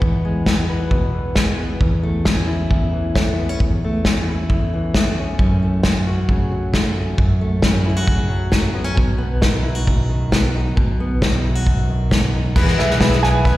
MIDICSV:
0, 0, Header, 1, 6, 480
1, 0, Start_track
1, 0, Key_signature, 4, "major"
1, 0, Tempo, 448096
1, 18, Time_signature, 4, 2, 24, 8
1, 14536, End_track
2, 0, Start_track
2, 0, Title_t, "Upright piano"
2, 0, Program_c, 0, 0
2, 13452, Note_on_c, 0, 71, 81
2, 13696, Note_on_c, 0, 76, 61
2, 13914, Note_off_c, 0, 71, 0
2, 13930, Note_on_c, 0, 71, 64
2, 14169, Note_on_c, 0, 80, 76
2, 14395, Note_off_c, 0, 71, 0
2, 14411, Note_on_c, 0, 71, 75
2, 14536, Note_off_c, 0, 71, 0
2, 14536, Note_off_c, 0, 76, 0
2, 14536, Note_off_c, 0, 80, 0
2, 14536, End_track
3, 0, Start_track
3, 0, Title_t, "Steel-string acoustic guitar"
3, 0, Program_c, 1, 25
3, 13451, Note_on_c, 1, 52, 76
3, 13456, Note_on_c, 1, 59, 73
3, 13458, Note_on_c, 1, 64, 72
3, 13462, Note_on_c, 1, 68, 82
3, 13675, Note_off_c, 1, 68, 0
3, 13687, Note_off_c, 1, 64, 0
3, 13688, Note_on_c, 1, 68, 55
3, 13693, Note_off_c, 1, 52, 0
3, 13696, Note_off_c, 1, 59, 0
3, 13700, Note_on_c, 1, 64, 45
3, 13707, Note_on_c, 1, 59, 48
3, 13917, Note_off_c, 1, 59, 0
3, 13919, Note_on_c, 1, 52, 73
3, 13920, Note_off_c, 1, 64, 0
3, 13923, Note_off_c, 1, 68, 0
3, 13930, Note_on_c, 1, 59, 69
3, 13932, Note_on_c, 1, 64, 84
3, 13936, Note_on_c, 1, 68, 86
3, 14400, Note_off_c, 1, 59, 0
3, 14401, Note_off_c, 1, 52, 0
3, 14406, Note_on_c, 1, 52, 59
3, 14412, Note_on_c, 1, 59, 67
3, 14414, Note_off_c, 1, 68, 0
3, 14417, Note_off_c, 1, 64, 0
3, 14421, Note_on_c, 1, 64, 64
3, 14429, Note_on_c, 1, 68, 64
3, 14536, Note_off_c, 1, 52, 0
3, 14536, Note_off_c, 1, 59, 0
3, 14536, Note_off_c, 1, 64, 0
3, 14536, Note_off_c, 1, 68, 0
3, 14536, End_track
4, 0, Start_track
4, 0, Title_t, "Steel-string acoustic guitar"
4, 0, Program_c, 2, 25
4, 0, Note_on_c, 2, 52, 51
4, 0, Note_on_c, 2, 59, 50
4, 27, Note_on_c, 2, 40, 64
4, 266, Note_on_c, 2, 56, 48
4, 490, Note_off_c, 2, 59, 0
4, 503, Note_on_c, 2, 59, 50
4, 745, Note_on_c, 2, 71, 46
4, 976, Note_on_c, 2, 47, 46
4, 1202, Note_off_c, 2, 52, 0
4, 1207, Note_on_c, 2, 52, 49
4, 1216, Note_off_c, 2, 47, 0
4, 1443, Note_off_c, 2, 56, 0
4, 1456, Note_on_c, 2, 56, 41
4, 1679, Note_off_c, 2, 59, 0
4, 1692, Note_on_c, 2, 59, 48
4, 1907, Note_off_c, 2, 56, 0
4, 1911, Note_off_c, 2, 71, 0
4, 1929, Note_off_c, 2, 40, 0
4, 1933, Note_on_c, 2, 40, 60
4, 1934, Note_off_c, 2, 59, 0
4, 2177, Note_on_c, 2, 57, 51
4, 2420, Note_on_c, 2, 61, 47
4, 2649, Note_on_c, 2, 64, 48
4, 2890, Note_off_c, 2, 40, 0
4, 2895, Note_on_c, 2, 40, 48
4, 3127, Note_off_c, 2, 52, 0
4, 3132, Note_on_c, 2, 52, 47
4, 3375, Note_off_c, 2, 57, 0
4, 3379, Note_on_c, 2, 57, 43
4, 3618, Note_off_c, 2, 61, 0
4, 3622, Note_on_c, 2, 59, 48
4, 3740, Note_off_c, 2, 59, 0
4, 3740, Note_on_c, 2, 61, 41
4, 3825, Note_off_c, 2, 52, 0
4, 3855, Note_off_c, 2, 40, 0
4, 3857, Note_off_c, 2, 61, 0
4, 3874, Note_on_c, 2, 40, 61
4, 4113, Note_off_c, 2, 57, 0
4, 4117, Note_on_c, 2, 57, 47
4, 4357, Note_on_c, 2, 61, 52
4, 4572, Note_off_c, 2, 64, 0
4, 4593, Note_on_c, 2, 64, 48
4, 4818, Note_off_c, 2, 40, 0
4, 4831, Note_on_c, 2, 40, 44
4, 5073, Note_on_c, 2, 52, 51
4, 5327, Note_off_c, 2, 57, 0
4, 5331, Note_on_c, 2, 57, 44
4, 5557, Note_off_c, 2, 61, 0
4, 5562, Note_on_c, 2, 61, 47
4, 5755, Note_off_c, 2, 52, 0
4, 5775, Note_off_c, 2, 40, 0
4, 5780, Note_on_c, 2, 42, 58
4, 5784, Note_off_c, 2, 64, 0
4, 6023, Note_off_c, 2, 57, 0
4, 6027, Note_on_c, 2, 57, 46
4, 6252, Note_off_c, 2, 61, 0
4, 6256, Note_on_c, 2, 61, 51
4, 6504, Note_on_c, 2, 66, 49
4, 6744, Note_on_c, 2, 49, 42
4, 6978, Note_on_c, 2, 54, 53
4, 6980, Note_off_c, 2, 49, 0
4, 7217, Note_off_c, 2, 57, 0
4, 7230, Note_on_c, 2, 57, 46
4, 7457, Note_off_c, 2, 61, 0
4, 7470, Note_on_c, 2, 61, 49
4, 7670, Note_off_c, 2, 42, 0
4, 7675, Note_off_c, 2, 57, 0
4, 7675, Note_off_c, 2, 61, 0
4, 7694, Note_on_c, 2, 42, 66
4, 7940, Note_on_c, 2, 57, 46
4, 8180, Note_on_c, 2, 61, 50
4, 8412, Note_off_c, 2, 66, 0
4, 8417, Note_on_c, 2, 64, 52
4, 8449, Note_off_c, 2, 54, 0
4, 8532, Note_off_c, 2, 64, 0
4, 8532, Note_on_c, 2, 66, 43
4, 8649, Note_on_c, 2, 49, 46
4, 8874, Note_on_c, 2, 54, 51
4, 8894, Note_off_c, 2, 49, 0
4, 9115, Note_off_c, 2, 57, 0
4, 9128, Note_on_c, 2, 57, 41
4, 9357, Note_off_c, 2, 61, 0
4, 9361, Note_on_c, 2, 59, 46
4, 9472, Note_off_c, 2, 59, 0
4, 9472, Note_on_c, 2, 61, 36
4, 9585, Note_off_c, 2, 57, 0
4, 9587, Note_on_c, 2, 47, 70
4, 9588, Note_off_c, 2, 42, 0
4, 9605, Note_off_c, 2, 61, 0
4, 9616, Note_off_c, 2, 66, 0
4, 9836, Note_on_c, 2, 59, 53
4, 10081, Note_on_c, 2, 63, 48
4, 10315, Note_on_c, 2, 64, 52
4, 10347, Note_off_c, 2, 54, 0
4, 10443, Note_off_c, 2, 64, 0
4, 10443, Note_on_c, 2, 66, 44
4, 10563, Note_off_c, 2, 47, 0
4, 10573, Note_on_c, 2, 42, 50
4, 10809, Note_on_c, 2, 51, 49
4, 11056, Note_off_c, 2, 59, 0
4, 11060, Note_on_c, 2, 59, 46
4, 11285, Note_off_c, 2, 63, 0
4, 11298, Note_on_c, 2, 63, 48
4, 11505, Note_off_c, 2, 51, 0
4, 11507, Note_off_c, 2, 42, 0
4, 11510, Note_off_c, 2, 63, 0
4, 11531, Note_off_c, 2, 66, 0
4, 11531, Note_on_c, 2, 47, 65
4, 11782, Note_off_c, 2, 59, 0
4, 11786, Note_on_c, 2, 59, 52
4, 12019, Note_on_c, 2, 63, 51
4, 12256, Note_on_c, 2, 64, 46
4, 12376, Note_off_c, 2, 64, 0
4, 12376, Note_on_c, 2, 66, 44
4, 12494, Note_off_c, 2, 47, 0
4, 12499, Note_on_c, 2, 42, 48
4, 12739, Note_on_c, 2, 51, 46
4, 12981, Note_off_c, 2, 59, 0
4, 12995, Note_on_c, 2, 59, 43
4, 13208, Note_off_c, 2, 63, 0
4, 13221, Note_on_c, 2, 63, 48
4, 13428, Note_off_c, 2, 42, 0
4, 13428, Note_off_c, 2, 51, 0
4, 13430, Note_off_c, 2, 63, 0
4, 13436, Note_off_c, 2, 59, 0
4, 13455, Note_off_c, 2, 66, 0
4, 14536, End_track
5, 0, Start_track
5, 0, Title_t, "Fingered electric bass"
5, 0, Program_c, 3, 33
5, 17, Note_on_c, 3, 40, 54
5, 1897, Note_off_c, 3, 40, 0
5, 1934, Note_on_c, 3, 40, 64
5, 3816, Note_off_c, 3, 40, 0
5, 3855, Note_on_c, 3, 40, 54
5, 5737, Note_off_c, 3, 40, 0
5, 5778, Note_on_c, 3, 42, 64
5, 7660, Note_off_c, 3, 42, 0
5, 7699, Note_on_c, 3, 42, 61
5, 9581, Note_off_c, 3, 42, 0
5, 9614, Note_on_c, 3, 35, 59
5, 11498, Note_off_c, 3, 35, 0
5, 11540, Note_on_c, 3, 35, 66
5, 13419, Note_off_c, 3, 35, 0
5, 13455, Note_on_c, 3, 40, 85
5, 13651, Note_off_c, 3, 40, 0
5, 13700, Note_on_c, 3, 35, 76
5, 14479, Note_off_c, 3, 35, 0
5, 14536, End_track
6, 0, Start_track
6, 0, Title_t, "Drums"
6, 19, Note_on_c, 9, 36, 90
6, 126, Note_off_c, 9, 36, 0
6, 497, Note_on_c, 9, 38, 96
6, 498, Note_on_c, 9, 36, 72
6, 604, Note_off_c, 9, 38, 0
6, 605, Note_off_c, 9, 36, 0
6, 975, Note_on_c, 9, 36, 79
6, 1082, Note_off_c, 9, 36, 0
6, 1452, Note_on_c, 9, 38, 91
6, 1455, Note_on_c, 9, 36, 73
6, 1559, Note_off_c, 9, 38, 0
6, 1562, Note_off_c, 9, 36, 0
6, 1935, Note_on_c, 9, 36, 84
6, 2042, Note_off_c, 9, 36, 0
6, 2414, Note_on_c, 9, 38, 90
6, 2419, Note_on_c, 9, 36, 68
6, 2521, Note_off_c, 9, 38, 0
6, 2526, Note_off_c, 9, 36, 0
6, 2899, Note_on_c, 9, 36, 78
6, 3006, Note_off_c, 9, 36, 0
6, 3380, Note_on_c, 9, 36, 78
6, 3380, Note_on_c, 9, 38, 92
6, 3487, Note_off_c, 9, 36, 0
6, 3487, Note_off_c, 9, 38, 0
6, 3859, Note_on_c, 9, 36, 92
6, 3966, Note_off_c, 9, 36, 0
6, 4336, Note_on_c, 9, 38, 92
6, 4338, Note_on_c, 9, 36, 72
6, 4443, Note_off_c, 9, 38, 0
6, 4445, Note_off_c, 9, 36, 0
6, 4818, Note_on_c, 9, 36, 79
6, 4925, Note_off_c, 9, 36, 0
6, 5297, Note_on_c, 9, 36, 74
6, 5297, Note_on_c, 9, 38, 94
6, 5404, Note_off_c, 9, 36, 0
6, 5404, Note_off_c, 9, 38, 0
6, 5776, Note_on_c, 9, 36, 90
6, 5883, Note_off_c, 9, 36, 0
6, 6250, Note_on_c, 9, 38, 97
6, 6254, Note_on_c, 9, 36, 70
6, 6357, Note_off_c, 9, 38, 0
6, 6361, Note_off_c, 9, 36, 0
6, 6736, Note_on_c, 9, 36, 79
6, 6843, Note_off_c, 9, 36, 0
6, 7215, Note_on_c, 9, 36, 72
6, 7217, Note_on_c, 9, 38, 95
6, 7322, Note_off_c, 9, 36, 0
6, 7324, Note_off_c, 9, 38, 0
6, 7694, Note_on_c, 9, 36, 92
6, 7801, Note_off_c, 9, 36, 0
6, 8167, Note_on_c, 9, 38, 98
6, 8172, Note_on_c, 9, 36, 76
6, 8274, Note_off_c, 9, 38, 0
6, 8279, Note_off_c, 9, 36, 0
6, 8650, Note_on_c, 9, 36, 84
6, 8757, Note_off_c, 9, 36, 0
6, 9124, Note_on_c, 9, 38, 96
6, 9131, Note_on_c, 9, 36, 74
6, 9231, Note_off_c, 9, 38, 0
6, 9238, Note_off_c, 9, 36, 0
6, 9613, Note_on_c, 9, 36, 90
6, 9721, Note_off_c, 9, 36, 0
6, 10090, Note_on_c, 9, 38, 90
6, 10095, Note_on_c, 9, 36, 77
6, 10198, Note_off_c, 9, 38, 0
6, 10202, Note_off_c, 9, 36, 0
6, 10577, Note_on_c, 9, 36, 86
6, 10685, Note_off_c, 9, 36, 0
6, 11057, Note_on_c, 9, 38, 99
6, 11059, Note_on_c, 9, 36, 73
6, 11164, Note_off_c, 9, 38, 0
6, 11166, Note_off_c, 9, 36, 0
6, 11539, Note_on_c, 9, 36, 81
6, 11647, Note_off_c, 9, 36, 0
6, 12019, Note_on_c, 9, 36, 70
6, 12020, Note_on_c, 9, 38, 93
6, 12126, Note_off_c, 9, 36, 0
6, 12128, Note_off_c, 9, 38, 0
6, 12496, Note_on_c, 9, 36, 83
6, 12603, Note_off_c, 9, 36, 0
6, 12976, Note_on_c, 9, 36, 75
6, 12978, Note_on_c, 9, 38, 94
6, 13083, Note_off_c, 9, 36, 0
6, 13085, Note_off_c, 9, 38, 0
6, 13453, Note_on_c, 9, 36, 102
6, 13453, Note_on_c, 9, 38, 33
6, 13453, Note_on_c, 9, 49, 97
6, 13560, Note_off_c, 9, 36, 0
6, 13560, Note_off_c, 9, 38, 0
6, 13560, Note_off_c, 9, 49, 0
6, 13576, Note_on_c, 9, 38, 33
6, 13683, Note_off_c, 9, 38, 0
6, 13700, Note_on_c, 9, 38, 30
6, 13807, Note_off_c, 9, 38, 0
6, 13822, Note_on_c, 9, 38, 26
6, 13929, Note_off_c, 9, 38, 0
6, 13931, Note_on_c, 9, 38, 105
6, 13932, Note_on_c, 9, 36, 80
6, 14038, Note_off_c, 9, 38, 0
6, 14039, Note_off_c, 9, 36, 0
6, 14055, Note_on_c, 9, 38, 33
6, 14162, Note_off_c, 9, 38, 0
6, 14175, Note_on_c, 9, 38, 31
6, 14282, Note_off_c, 9, 38, 0
6, 14410, Note_on_c, 9, 36, 96
6, 14410, Note_on_c, 9, 38, 31
6, 14517, Note_off_c, 9, 36, 0
6, 14517, Note_off_c, 9, 38, 0
6, 14536, End_track
0, 0, End_of_file